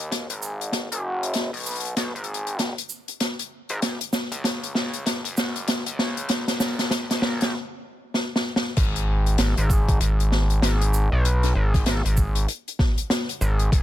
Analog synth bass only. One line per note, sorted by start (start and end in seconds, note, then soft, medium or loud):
0.00 0.27 D#2 medium
0.30 0.89 G#1 medium
0.92 1.51 F#1 medium
1.53 1.95 B1 medium
1.97 2.13 B1 medium
2.15 2.74 G#1 medium
3.70 3.80 G#1 medium
3.82 3.98 F#1 medium
4.32 4.73 C#2 loud
4.75 5.22 C#2 medium
5.25 5.84 F#1 loud
5.87 6.46 C#2 loud
6.48 6.90 A#1 loud
6.91 7.07 A#1 loud
7.10 7.53 A#1 loud
8.77 9.37 G#1 loud
9.39 9.55 G#1 loud
9.58 9.99 G#1 loud
10.01 10.61 G#1 loud
10.62 11.09 G#1 loud
11.12 11.54 B1 loud
11.55 11.84 G#1 loud
11.86 12.02 G#1 loud
12.05 12.46 G#1 loud
13.41 13.70 G#1 medium
13.72 13.83 F#1 loud